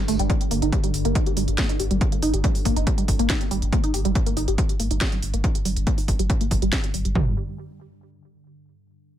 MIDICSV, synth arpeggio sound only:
0, 0, Header, 1, 2, 480
1, 0, Start_track
1, 0, Key_signature, -2, "minor"
1, 0, Tempo, 428571
1, 332, Time_signature, 4, 2, 24, 8
1, 10291, End_track
2, 0, Start_track
2, 0, Title_t, "Synth arpeggio sound"
2, 0, Program_c, 0, 84
2, 92, Note_on_c, 0, 57, 101
2, 164, Note_off_c, 0, 57, 0
2, 216, Note_on_c, 0, 55, 102
2, 316, Note_off_c, 0, 55, 0
2, 332, Note_on_c, 0, 55, 104
2, 404, Note_off_c, 0, 55, 0
2, 572, Note_on_c, 0, 58, 106
2, 680, Note_off_c, 0, 58, 0
2, 697, Note_on_c, 0, 63, 100
2, 797, Note_off_c, 0, 63, 0
2, 812, Note_on_c, 0, 67, 85
2, 884, Note_off_c, 0, 67, 0
2, 937, Note_on_c, 0, 55, 100
2, 1003, Note_off_c, 0, 55, 0
2, 1177, Note_on_c, 0, 58, 104
2, 1277, Note_off_c, 0, 58, 0
2, 1292, Note_on_c, 0, 63, 101
2, 1400, Note_off_c, 0, 63, 0
2, 1417, Note_on_c, 0, 67, 82
2, 1483, Note_off_c, 0, 67, 0
2, 1532, Note_on_c, 0, 55, 100
2, 1604, Note_off_c, 0, 55, 0
2, 1772, Note_on_c, 0, 58, 99
2, 1880, Note_off_c, 0, 58, 0
2, 1896, Note_on_c, 0, 63, 98
2, 1997, Note_off_c, 0, 63, 0
2, 2012, Note_on_c, 0, 67, 78
2, 2084, Note_off_c, 0, 67, 0
2, 2136, Note_on_c, 0, 55, 100
2, 2203, Note_off_c, 0, 55, 0
2, 2376, Note_on_c, 0, 58, 102
2, 2476, Note_off_c, 0, 58, 0
2, 2492, Note_on_c, 0, 63, 106
2, 2600, Note_off_c, 0, 63, 0
2, 2616, Note_on_c, 0, 67, 77
2, 2683, Note_off_c, 0, 67, 0
2, 2732, Note_on_c, 0, 55, 109
2, 2804, Note_off_c, 0, 55, 0
2, 2972, Note_on_c, 0, 58, 100
2, 3080, Note_off_c, 0, 58, 0
2, 3097, Note_on_c, 0, 63, 106
2, 3197, Note_off_c, 0, 63, 0
2, 3212, Note_on_c, 0, 67, 81
2, 3284, Note_off_c, 0, 67, 0
2, 3336, Note_on_c, 0, 55, 103
2, 3403, Note_off_c, 0, 55, 0
2, 3576, Note_on_c, 0, 58, 108
2, 3676, Note_off_c, 0, 58, 0
2, 3691, Note_on_c, 0, 63, 105
2, 3800, Note_off_c, 0, 63, 0
2, 3816, Note_on_c, 0, 67, 74
2, 3883, Note_off_c, 0, 67, 0
2, 3932, Note_on_c, 0, 55, 104
2, 4004, Note_off_c, 0, 55, 0
2, 4172, Note_on_c, 0, 58, 101
2, 4280, Note_off_c, 0, 58, 0
2, 4297, Note_on_c, 0, 63, 99
2, 4397, Note_off_c, 0, 63, 0
2, 4412, Note_on_c, 0, 67, 76
2, 4484, Note_off_c, 0, 67, 0
2, 4536, Note_on_c, 0, 55, 105
2, 4603, Note_off_c, 0, 55, 0
2, 4776, Note_on_c, 0, 58, 99
2, 4876, Note_off_c, 0, 58, 0
2, 4892, Note_on_c, 0, 63, 98
2, 5000, Note_off_c, 0, 63, 0
2, 5017, Note_on_c, 0, 67, 81
2, 5083, Note_off_c, 0, 67, 0
2, 5132, Note_on_c, 0, 55, 98
2, 5204, Note_off_c, 0, 55, 0
2, 5372, Note_on_c, 0, 58, 102
2, 5480, Note_off_c, 0, 58, 0
2, 5496, Note_on_c, 0, 63, 105
2, 5597, Note_off_c, 0, 63, 0
2, 5612, Note_on_c, 0, 67, 85
2, 5684, Note_off_c, 0, 67, 0
2, 5736, Note_on_c, 0, 55, 99
2, 5803, Note_off_c, 0, 55, 0
2, 5977, Note_on_c, 0, 58, 100
2, 6077, Note_off_c, 0, 58, 0
2, 6092, Note_on_c, 0, 63, 105
2, 6200, Note_off_c, 0, 63, 0
2, 6216, Note_on_c, 0, 67, 76
2, 6283, Note_off_c, 0, 67, 0
2, 6331, Note_on_c, 0, 55, 106
2, 6404, Note_off_c, 0, 55, 0
2, 6572, Note_on_c, 0, 58, 107
2, 6680, Note_off_c, 0, 58, 0
2, 6696, Note_on_c, 0, 63, 100
2, 6796, Note_off_c, 0, 63, 0
2, 6812, Note_on_c, 0, 67, 75
2, 6884, Note_off_c, 0, 67, 0
2, 6936, Note_on_c, 0, 55, 105
2, 7003, Note_off_c, 0, 55, 0
2, 7177, Note_on_c, 0, 58, 102
2, 7277, Note_off_c, 0, 58, 0
2, 7292, Note_on_c, 0, 55, 77
2, 7335, Note_off_c, 0, 55, 0
2, 7416, Note_on_c, 0, 55, 108
2, 7516, Note_off_c, 0, 55, 0
2, 7532, Note_on_c, 0, 62, 97
2, 7604, Note_off_c, 0, 62, 0
2, 7656, Note_on_c, 0, 67, 74
2, 7723, Note_off_c, 0, 67, 0
2, 7772, Note_on_c, 0, 55, 105
2, 7844, Note_off_c, 0, 55, 0
2, 7896, Note_on_c, 0, 55, 77
2, 7997, Note_off_c, 0, 55, 0
2, 8012, Note_on_c, 0, 55, 96
2, 8235, Note_off_c, 0, 55, 0
2, 10291, End_track
0, 0, End_of_file